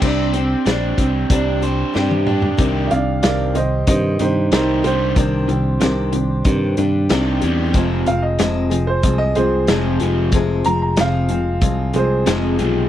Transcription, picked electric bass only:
0.02 0.54 C2 medium
0.67 0.92 A#1 medium
0.98 1.24 C2 medium
1.30 1.83 C2 medium
1.96 2.47 G2 medium
2.59 2.88 C2 medium
2.92 3.21 C2 medium
3.24 3.84 C2 medium
3.87 4.17 G2 medium
4.20 4.49 G2 medium
4.52 4.81 C2 medium
4.84 5.14 C2 medium
5.17 5.46 C2 medium
5.49 5.78 C2 medium
5.81 6.42 C2 medium
6.45 6.75 G2 medium
6.78 7.07 G2 medium
7.11 7.40 C2 medium
7.43 7.72 E2 medium
7.74 8.04 F1 medium
8.08 8.37 F1 medium
8.40 9.00 F1 medium
9.03 9.33 C2 medium
9.37 9.66 C2 medium
9.69 9.98 F1 medium
10.02 10.31 F1 medium
10.33 10.62 F1 medium
10.66 10.95 F1 loud
10.99 11.59 F1 medium
11.62 11.91 C2 medium
11.95 12.24 C2 medium
12.27 12.56 F1 medium
12.60 12.89 B1 medium

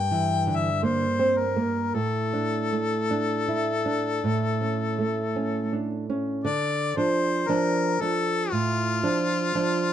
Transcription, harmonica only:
0.00 0.58 G5 medium
0.56 0.84 E5 medium
0.83 1.39 C5 medium
1.38 1.96 A#4 medium
1.95 5.91 A4 medium
6.44 6.98 D5 medium
6.97 7.50 C5 medium
7.49 8.02 A#4 medium
8.01 8.53 A4 loud
8.52 9.93 F4 medium

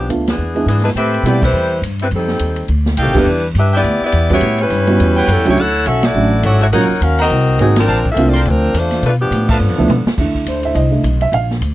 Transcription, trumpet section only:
0.96 1.75 C4 medium
0.96 1.76 A4 medium
0.96 1.75 G5 medium
0.96 1.75 B5 medium
2.97 3.27 A4 medium
2.97 3.27 D#5 medium
2.97 3.27 F5 medium
2.97 3.26 G5 loud
3.72 3.80 B4 medium
3.72 3.81 D5 medium
3.72 3.80 E5 medium
3.72 3.81 G5 medium
5.16 5.55 B4 loud
5.16 5.55 C#5 medium
5.16 5.55 F#5 medium
5.16 5.54 G5 loud
6.43 6.70 C#5 medium
6.43 6.72 D5 medium
6.43 6.72 E5 medium
6.43 6.71 F#5 medium
6.72 6.83 A#4 medium
6.72 6.83 C#5 medium
6.72 6.83 D#5 medium
6.72 6.84 F#5 medium
7.18 7.26 A#4 medium
7.18 7.26 C5 medium
7.18 7.26 F#5 medium
7.18 7.26 A#5 medium
7.87 7.99 A#4 medium
7.87 7.99 C5 medium
7.87 7.99 D5 medium
7.87 7.99 A5 loud
8.33 8.41 A#4 medium
8.33 8.41 C5 medium
8.33 8.42 D5 medium
8.33 8.41 C6 loud
9.48 9.57 B4 medium
9.48 9.56 E5 medium
9.48 9.57 F5 medium
9.48 9.57 A5 medium

